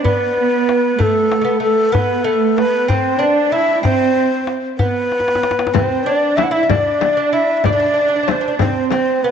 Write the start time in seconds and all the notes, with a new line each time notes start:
0.03 B3 B4, tombak dum
0.37 tombak ka
0.69 tombak tek
0.98 A3 A4, tombak dum
1.32 tombak tek
1.41 A3 B3
1.60 A3 A4
1.92 B3 B4, tombak dum
2.24 A3 A4
2.57 B3 B4, tombak tek
2.88 C4 C5, tombak dum
3.19 D4 D5
3.52 E4 E5
3.83 C4 C5, tombak dum
4.17 tombak ka
4.47 tombak tek
4.78 B3 B4, tombak dum
5.12 tombak tek
5.20 tombak ka
5.28 tombak tek
5.35 tombak ka
5.43 tombak tek
5.51 tombak ka
5.59 tombak tek
5.67 tombak ka
5.73 C4 C5, frame drum, tombak dum
6.04 D4 D5, tombak ka
6.37 E4 E5, tombak tek, frame drum
6.44 F#5
6.51 E4 E5
6.63 E4
6.69 D4 D5, frame drum, tombak dum
7.01 tombak tek, frame drum
7.17 D4
7.33 E4 E5
7.57 E5
7.64 D4 D5, frame drum, tombak dum
7.73 D4
7.80 D4
7.86 D4
7.94 D4
8.01 D4
8.08 D4
8.16 D4
8.23 D4
8.28 D4 C5, tombak tek, frame drum
8.41 D4
8.48 D4
8.52 D4
8.59 C4 C5, frame drum, tombak dum
8.90 C4 C5, tombak tek, frame drum
9.22 B3 B4